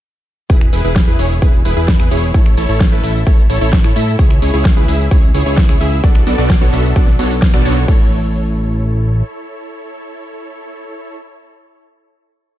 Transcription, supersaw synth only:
0.50 0.70 E4 medium
0.50 0.70 G#4 medium
0.50 0.70 B4 medium
0.73 0.83 E4 medium
0.73 0.83 G#4 medium
0.73 0.83 B4 medium
0.84 1.05 E4 medium
0.84 1.05 G#4 medium
0.84 1.05 B4 medium
1.08 1.17 E4 loud
1.08 1.17 G#4 medium
1.08 1.17 B4 loud
1.19 1.39 E4 medium
1.19 1.39 G#4 medium
1.19 1.39 C#5 medium
1.42 1.55 E4 loud
1.42 1.55 G#4 medium
1.42 1.55 B4 loud
1.65 1.74 E4 medium
1.65 1.74 G#4 medium
1.65 1.74 B4 loud
1.77 1.89 E4 loud
1.77 1.89 G#4 medium
1.77 1.89 B4 loud
2.00 2.10 E4 medium
2.00 2.10 G#4 medium
2.00 2.10 B4 medium
2.11 2.31 E4 medium
2.11 2.31 G#4 medium
2.11 2.31 C#5 loud
2.34 2.55 E4 medium
2.34 2.55 A4 medium
2.34 2.55 C#5 medium
2.58 2.67 E4 medium
2.58 2.67 A4 medium
2.58 2.67 C#5 medium
2.69 2.89 E4 medium
2.69 2.89 A4 medium
2.69 2.89 C#5 medium
2.92 3.02 E4 loud
2.92 3.02 A4 medium
2.92 3.02 B4 loud
3.04 3.24 E4 medium
3.04 3.24 A4 medium
3.04 3.24 E5 medium
3.27 3.39 E4 loud
3.27 3.39 A4 medium
3.27 3.39 C#5 loud
3.50 3.59 E4 medium
3.50 3.59 A4 medium
3.50 3.59 C#5 loud
3.61 3.74 E4 medium
3.61 3.74 A4 medium
3.61 3.74 C#5 loud
3.84 3.94 E4 medium
3.84 3.94 A4 medium
3.84 3.94 C#5 medium
3.96 4.16 E4 medium
3.96 4.16 A4 medium
3.96 4.16 E5 loud
4.19 4.39 E4 medium
4.19 4.39 G#4 medium
4.19 4.39 C#5 medium
4.42 4.52 E4 medium
4.42 4.52 G#4 medium
4.42 4.52 C#5 medium
4.54 4.74 E4 medium
4.54 4.74 G#4 medium
4.54 4.74 C#5 medium
4.77 4.87 E4 loud
4.77 4.87 G#4 medium
4.77 4.87 B4 loud
4.88 5.09 E4 medium
4.88 5.09 G#4 medium
4.88 5.09 E5 medium
5.11 5.24 E4 loud
5.11 5.24 G#4 medium
5.11 5.24 C#5 loud
5.34 5.43 E4 medium
5.34 5.43 G#4 medium
5.34 5.43 C#5 loud
5.46 5.58 E4 medium
5.46 5.58 G#4 medium
5.46 5.58 C#5 loud
5.69 5.79 E4 medium
5.69 5.79 G#4 medium
5.69 5.79 C#5 medium
5.81 6.00 E4 medium
5.81 6.00 G#4 medium
5.81 6.00 E5 loud
6.04 6.24 B3 medium
6.04 6.24 D4 medium
6.04 6.24 F#4 medium
6.04 6.24 A4 medium
6.04 6.24 D5 medium
6.27 6.37 B3 medium
6.27 6.37 D4 medium
6.27 6.37 F#4 medium
6.27 6.37 A4 medium
6.27 6.37 D5 medium
6.38 6.59 B3 medium
6.38 6.59 D4 medium
6.38 6.59 F#4 medium
6.38 6.59 A4 medium
6.38 6.59 D5 medium
6.61 6.71 B3 loud
6.61 6.71 D4 medium
6.61 6.71 F#4 medium
6.61 6.71 A4 medium
6.61 6.71 C#5 loud
6.73 6.93 B3 medium
6.73 6.93 D4 medium
6.73 6.93 F#4 medium
6.73 6.93 A4 medium
6.73 6.93 E5 medium
6.96 7.08 B3 loud
6.96 7.08 D4 medium
6.96 7.08 F#4 medium
6.96 7.08 A4 medium
6.96 7.08 D5 loud
7.19 7.32 B3 medium
7.19 7.32 D4 medium
7.19 7.32 F#4 medium
7.19 7.32 A4 medium
7.19 7.32 C#5 medium
7.54 7.64 B3 loud
7.54 7.64 D4 medium
7.54 7.64 F#4 medium
7.54 7.64 A4 medium
7.54 7.64 D5 loud
7.65 7.86 B3 medium
7.65 7.86 D4 medium
7.65 7.86 F#4 medium
7.65 7.86 A4 medium
7.65 7.86 C#5 loud
7.88 11.17 E4 medium
7.88 11.17 A4 medium
7.88 11.16 C#5 loud

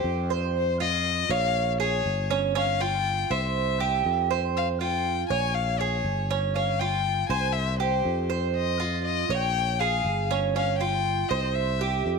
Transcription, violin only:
0.00 0.27 C5 medium
0.58 0.80 C5 medium
0.81 1.32 D#5 loud
1.31 1.72 F5 loud
1.81 2.27 C#5 loud
2.58 2.83 F5 loud
2.81 3.33 G5 loud
3.31 4.31 E5 medium
4.57 4.68 F5 loud
4.81 5.27 G5 loud
5.29 5.56 G#5 loud
5.54 5.81 F5 loud
5.79 6.30 C#5 medium
6.55 6.81 F5 medium
6.80 7.29 G5 loud
7.29 7.54 G#5 loud
7.53 7.79 E5 loud
7.79 8.26 C5 medium
8.56 9.02 D#5 medium
9.05 9.36 D#5 medium
9.37 9.81 G5 loud
9.80 10.30 F5 loud
10.56 10.78 F5 loud
10.79 11.30 G5 loud
11.29 11.56 D#5 medium
11.55 12.05 E5 medium

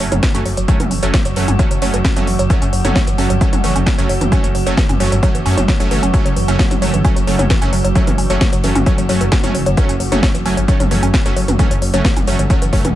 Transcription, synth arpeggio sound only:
0.00 0.04 F#3 medium
0.12 0.16 F#3 loud
0.23 0.27 E3 medium
0.34 0.45 C#4 medium
0.46 0.53 F#3 medium
0.57 0.61 F#3 medium
0.68 0.73 F#3 loud
0.80 0.84 E3 medium
0.91 1.02 C#4 medium
1.03 1.09 F#3 medium
1.14 1.18 F#3 medium
1.25 1.29 F#3 loud
1.36 1.41 E3 medium
1.48 1.58 C#4 medium
1.59 1.66 F#3 medium
1.71 1.75 F#3 medium
1.82 1.86 F#3 loud
1.94 1.98 E3 medium
2.05 2.15 C#4 medium
2.16 2.23 F#3 medium
2.27 2.32 F#3 medium
2.39 2.43 F#3 loud
2.50 2.54 E3 medium
2.62 2.72 C#4 medium
2.73 2.80 F#3 medium
2.85 2.89 F#3 medium
2.95 3.00 F#3 loud
3.07 3.11 E3 medium
3.18 3.29 C#4 medium
3.30 3.37 F#3 medium
3.41 3.45 F#3 medium
3.53 3.57 F#3 loud
3.64 3.68 E3 medium
3.76 3.86 C#4 medium
3.87 3.94 F#3 medium
3.98 4.02 F#3 medium
4.09 4.14 F#3 loud
4.21 4.25 E3 medium
4.32 4.43 C#4 medium
4.44 4.50 F#3 medium
4.55 4.59 F#3 medium
4.67 4.71 F#3 loud
4.78 4.82 E3 medium
4.89 4.99 C#4 medium
5.00 5.07 F#3 medium
5.12 5.16 F#3 medium
5.23 5.27 F#3 loud
5.35 5.39 E3 medium
5.46 5.56 C#4 medium
5.57 5.64 F#3 medium
5.68 5.73 F#3 medium
5.80 5.84 F#3 loud
5.91 5.95 E3 medium
6.03 6.13 C#4 medium
6.14 6.18 F#3 medium
6.25 6.29 F#3 loud
6.36 6.41 E3 medium
6.48 6.58 C#4 medium
6.59 6.66 F#3 medium
6.71 6.75 F#3 medium
6.82 6.86 F#3 loud
6.93 6.98 E3 medium
7.05 7.15 C#4 medium
7.16 7.23 F#3 medium
7.27 7.32 F#3 medium
7.39 7.43 F#3 loud
7.50 7.54 E3 medium
7.62 7.72 C#4 medium
7.73 7.80 F#3 medium
7.84 7.89 F#3 medium
7.95 8.00 F#3 loud
8.07 8.11 E3 medium
8.18 8.29 C#4 medium
8.30 8.37 F#3 medium
8.41 8.45 F#3 medium
8.53 8.57 F#3 loud
8.64 8.68 E3 medium
8.75 8.85 C#4 medium
8.86 8.94 F#3 medium
8.98 9.02 F#3 medium
9.09 9.13 F#3 loud
9.21 9.25 E3 medium
9.32 9.43 C#4 medium
9.44 9.50 F#3 medium
9.55 9.59 F#3 medium
9.66 9.70 F#3 loud
9.77 9.82 E3 medium
9.89 9.99 C#4 medium
10.00 10.07 F#3 medium
10.12 10.16 F#3 medium
10.23 10.27 F#3 loud
10.34 10.39 E3 medium
10.46 10.56 C#4 medium
10.57 10.64 F#3 medium
10.68 10.73 F#3 medium
10.80 10.84 F#3 loud
10.91 10.95 E3 medium
11.03 11.13 C#4 medium
11.14 11.21 F#3 medium
11.26 11.30 F#3 medium
11.36 11.41 F#3 loud
11.48 11.52 E3 medium
11.59 11.70 C#4 medium
11.71 11.78 F#3 medium
11.82 11.86 F#3 medium
11.94 11.98 F#3 loud
12.05 12.09 E3 medium
12.17 12.27 C#4 medium
12.27 12.35 F#3 medium
12.39 12.43 F#3 medium
12.50 12.54 F#3 loud
12.62 12.66 E3 medium
12.73 12.80 F#3 medium
12.85 12.91 E3 loud

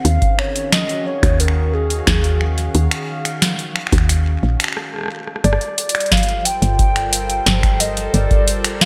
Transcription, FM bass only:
0.05 0.18 D#2 loud
1.23 2.01 D#2 medium
2.07 2.69 D#2 medium
2.75 2.88 D#2 loud
3.92 4.37 D#2 medium
4.43 4.56 A#1 medium
5.44 5.57 G1 medium
6.62 7.41 G1 medium
7.46 8.08 G1 medium
8.14 8.27 G1 loud

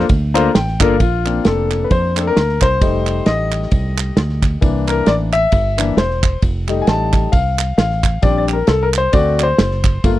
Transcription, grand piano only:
0.34 0.48 A#3 medium
0.34 0.48 D4 medium
0.34 0.48 F4 medium
0.34 0.49 A4 medium
0.34 0.49 C5 loud
0.34 0.53 A#5 medium
0.55 0.79 G5 medium
0.80 0.94 A#3 medium
0.80 0.94 D4 medium
0.80 0.94 F4 medium
0.80 0.94 A4 medium
0.80 0.94 A#4 loud
0.80 0.99 F5 medium
1.01 1.43 F4 medium
1.25 2.77 A#3 medium
1.25 2.15 C4 soft
1.25 2.16 D4 medium
1.46 1.86 A4 medium
1.84 1.91 B4 medium
1.92 2.21 C5 loud
2.16 2.34 A3 soft
2.16 2.34 C4 soft
2.16 2.35 D4 medium
2.20 2.26 A4 medium
2.27 2.63 A#4 loud
2.62 3.29 C5 loud
2.81 4.58 G3 medium
2.81 4.58 A3 medium
2.81 4.58 D#4 medium
3.26 4.38 D#5 loud
4.61 5.29 E3 medium
4.61 5.29 A#3 soft
4.61 5.30 D4 medium
4.89 5.08 A#4 loud
5.07 5.13 D5 loud
5.33 6.00 E5 loud
5.77 5.95 E3 medium
5.77 5.96 A#3 soft
5.77 5.96 D4 medium
5.98 6.40 C5 medium
6.68 7.30 G3 medium
6.68 7.30 A3 medium
6.68 7.30 D#4 medium
6.82 6.88 G#5 medium
6.88 7.30 A5 medium
7.32 7.76 F5 medium
7.78 8.25 F5 medium
8.22 8.55 G3 medium
8.22 8.55 C4 medium
8.22 8.55 D4 medium
8.22 8.37 D5 medium
8.38 8.43 D5 medium
8.53 8.69 A#4 medium
8.67 8.84 A4 medium
8.83 8.88 A#4 medium
8.98 9.14 C5 medium
9.12 9.45 A3 medium
9.12 9.45 C4 medium
9.12 9.45 F#4 medium
9.12 9.38 D5 loud
9.39 9.44 D5 medium
9.43 10.08 C5 medium
10.04 10.19 A3 medium
10.04 10.19 A#3 medium
10.04 10.19 F4 medium

